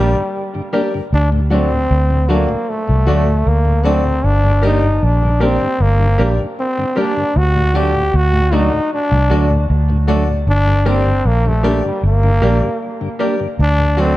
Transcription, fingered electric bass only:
0.00 0.14 A#1 medium
1.13 1.86 D2 medium
1.91 2.46 D2 medium
2.89 3.06 C2 medium
3.08 3.43 D2 medium
3.47 4.20 D2 medium
4.24 4.98 G1 medium
5.03 5.57 A#1 medium
5.80 6.16 G1 loud
6.19 6.37 A#1 medium
7.36 8.10 D2 loud
8.14 8.69 D2 loud
9.12 9.29 C2 medium
9.30 9.66 D2 medium
9.70 10.44 D2 loud
10.47 11.21 G1 medium
11.25 11.80 A#1 medium
12.03 12.39 G1 loud
12.42 12.60 A#1 medium
13.59 14.17 D2 medium

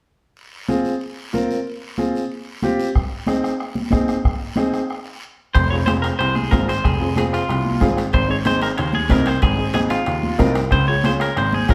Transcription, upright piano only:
0.68 0.91 C4 medium
0.68 0.92 F4 medium
0.68 0.92 G#4 medium
1.33 1.56 C4 medium
1.33 1.56 F4 medium
1.33 1.56 A#4 medium
1.98 2.21 C4 medium
1.98 2.21 F4 medium
1.98 2.21 G#4 medium
2.63 2.86 C4 medium
2.63 2.86 F4 medium
2.63 2.86 G4 medium
3.27 3.50 C4 medium
3.27 3.50 D#4 medium
3.27 3.51 G#4 medium
3.91 4.15 C4 medium
3.91 4.15 D#4 medium
3.91 4.15 G#4 medium
4.56 4.80 C4 medium
4.56 4.80 D#4 medium
4.56 4.80 G#4 medium
5.71 5.77 C4 medium
5.71 5.77 F4 soft
5.71 5.77 G#4 medium
5.86 6.09 C4 medium
5.86 6.10 F4 medium
5.86 6.10 G#4 medium
6.52 6.69 C4 medium
6.52 6.69 F4 medium
6.52 6.69 G#4 medium
7.00 7.06 C4 medium
7.00 7.06 F4 medium
7.00 7.07 G#4 medium
7.16 7.39 C4 medium
7.16 7.39 F4 medium
7.16 7.39 G#4 medium
7.80 7.98 C4 medium
7.80 7.98 F4 medium
7.80 7.98 G#4 medium
8.28 8.35 C4 medium
8.28 8.35 D#4 medium
8.28 8.35 G#4 medium
8.46 8.69 C4 medium
8.46 8.69 D#4 medium
8.46 8.69 G#4 medium
9.10 9.27 C4 medium
9.10 9.27 D#4 medium
9.10 9.28 A#4 medium
9.58 9.64 C4 medium
9.58 9.64 D#4 soft
9.58 9.65 G#4 medium
9.74 9.97 C4 medium
9.74 9.97 D#4 medium
9.74 9.97 G#4 medium
10.38 10.56 C4 medium
10.38 10.56 D#4 medium
10.38 10.56 A#4 loud
10.88 10.94 C#4 medium
10.88 10.94 F4 medium
10.88 10.94 G#4 medium
11.04 11.27 C#4 medium
11.04 11.28 F4 medium
11.04 11.28 G#4 medium
11.68 11.74 C#4 medium
11.68 11.74 F4 medium
11.68 11.74 G#4 medium

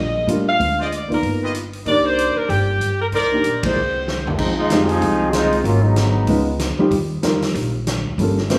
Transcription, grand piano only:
0.27 0.45 G3 medium
0.27 0.45 A#3 medium
0.27 0.45 D4 medium
0.27 0.46 F4 medium
0.59 0.77 G#3 soft
0.59 0.77 C4 soft
0.59 0.77 D4 soft
0.59 0.77 F4 medium
1.08 1.51 A#3 medium
1.08 1.51 B3 soft
1.08 1.52 D#4 soft
1.08 1.52 F4 medium
1.85 2.73 A#3 soft
1.85 2.74 D4 soft
1.85 2.74 D#4 soft
1.85 2.75 G4 medium
3.32 3.43 A#3 medium
3.32 3.43 D4 soft
3.32 3.44 D#4 soft
3.32 3.44 G4 medium
3.65 3.75 G#3 soft
3.65 3.76 A#3 soft
3.65 3.76 E4 soft
3.65 3.76 G#4 medium
4.72 5.18 G#3 medium
4.72 5.18 C4 medium
4.72 5.18 D#4 medium
4.72 5.18 F4 soft
4.72 5.18 G4 medium
6.27 6.45 G#3 medium
6.27 6.46 C#4 medium
6.27 6.46 D#4 soft
6.27 6.46 F4 medium
6.27 6.46 B4 medium
6.79 6.90 G3 medium
6.79 6.90 C4 medium
6.79 6.90 D#4 medium
6.79 6.91 F4 medium
6.79 6.91 G4 medium
7.22 7.70 G3 medium
7.22 7.70 C4 medium
7.22 7.70 D#4 medium
7.22 7.71 F4 medium
7.22 7.71 A#4 medium
8.19 8.35 G3 medium
8.19 8.36 A#3 medium
8.19 8.36 C#4 medium
8.19 8.36 F4 soft
8.19 8.37 A4 medium
8.50 8.59 G3 medium
8.50 8.59 A#3 medium
8.50 8.59 C#4 medium
8.50 8.59 F4 medium
8.50 8.59 C5 medium

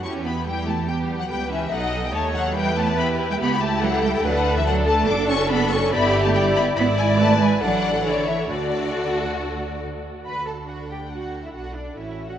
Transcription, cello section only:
0.04 0.26 C#4 loud
0.25 0.46 B3 medium
0.46 0.67 G3 loud
0.67 0.88 A3 medium
0.88 1.20 G3 loud
1.19 1.30 F#3 medium
1.30 1.51 G3 loud
1.50 1.71 E3 medium
1.72 2.03 F#3 loud
2.04 2.14 G3 medium
2.13 2.34 A3 loud
2.35 2.55 F#3 loud
2.56 2.77 G3 loud
2.76 2.97 A3 loud
2.98 3.06 B3 loud
3.29 3.40 G3 loud
3.40 3.60 B3 loud
3.61 3.69 A3 medium
3.82 4.03 F#3 loud
4.04 4.12 G3 loud
4.24 4.32 F#3 loud
4.56 4.60 E3 loud
4.66 4.87 F#3 loud
4.88 5.09 A3 loud
5.09 5.30 D4 loud
5.30 5.51 C#4 loud
5.51 5.72 B3 loud
5.73 5.94 C#4 loud
5.93 6.25 B3 loud
6.25 6.36 A3 loud
6.36 6.57 G3 loud
6.57 6.65 B3 loud
6.78 6.86 B3 loud
6.99 7.20 G#3 loud
7.21 7.42 A3 loud
7.42 7.50 G#3 loud
7.63 8.06 F#3 loud
8.07 8.28 D3 loud
8.29 8.50 E3 loud
8.51 9.83 D3 loud
10.26 10.46 B4 medium
10.47 10.69 A4 medium
10.69 10.90 F#4 medium
10.90 10.98 G4 medium
11.12 11.43 F#4 medium
11.44 11.54 E4 medium
11.54 11.75 F#4 medium
11.76 11.97 D4 medium
11.96 12.28 E4 medium
12.28 12.33 F#4 medium

